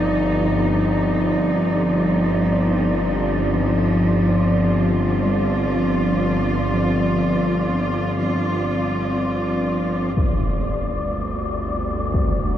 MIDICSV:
0, 0, Header, 1, 6, 480
1, 0, Start_track
1, 0, Tempo, 500000
1, 12076, End_track
2, 0, Start_track
2, 0, Title_t, "Synth texture"
2, 0, Program_c, 0, 99
2, 0, Note_on_c, 0, 74, 86
2, 9740, Note_off_c, 0, 74, 0
2, 9752, Note_on_c, 0, 74, 69
2, 12076, Note_off_c, 0, 74, 0
2, 12076, End_track
3, 0, Start_track
3, 0, Title_t, "Cello section"
3, 0, Program_c, 1, 48
3, 0, Note_on_c, 1, 43, 55
3, 0, Note_on_c, 1, 53, 84
3, 0, Note_on_c, 1, 60, 62
3, 0, Note_on_c, 1, 63, 76
3, 4105, Note_on_c, 1, 65, 66
3, 4383, Note_off_c, 1, 63, 0
3, 9764, Note_off_c, 1, 53, 0
3, 9770, Note_off_c, 1, 43, 0
3, 9770, Note_on_c, 1, 55, 60
3, 11487, Note_on_c, 1, 58, 74
3, 12076, Note_off_c, 1, 55, 0
3, 12076, Note_off_c, 1, 58, 0
3, 12076, Note_off_c, 1, 60, 0
3, 12076, Note_off_c, 1, 65, 0
3, 12076, End_track
4, 0, Start_track
4, 0, Title_t, "Kettle gongs"
4, 0, Program_c, 2, 14
4, 5045, Note_on_c, 2, 55, 43
4, 6466, Note_on_c, 2, 53, 46
4, 6648, Note_off_c, 2, 55, 0
4, 12076, Note_off_c, 2, 53, 0
4, 12076, End_track
5, 0, Start_track
5, 0, Title_t, "Synth drone"
5, 0, Program_c, 3, 95
5, 0, Note_on_c, 3, 31, 68
5, 9746, Note_off_c, 3, 31, 0
5, 9757, Note_on_c, 3, 31, 66
5, 9761, Note_on_c, 3, 38, 65
5, 12076, Note_off_c, 3, 31, 0
5, 12076, Note_off_c, 3, 38, 0
5, 12076, End_track
6, 0, Start_track
6, 0, Title_t, "Impact"
6, 0, Program_c, 4, 103
6, 9763, Note_on_c, 4, 60, 57
6, 9951, Note_off_c, 4, 60, 0
6, 11656, Note_on_c, 4, 60, 45
6, 11842, Note_off_c, 4, 60, 0
6, 12076, End_track
0, 0, End_of_file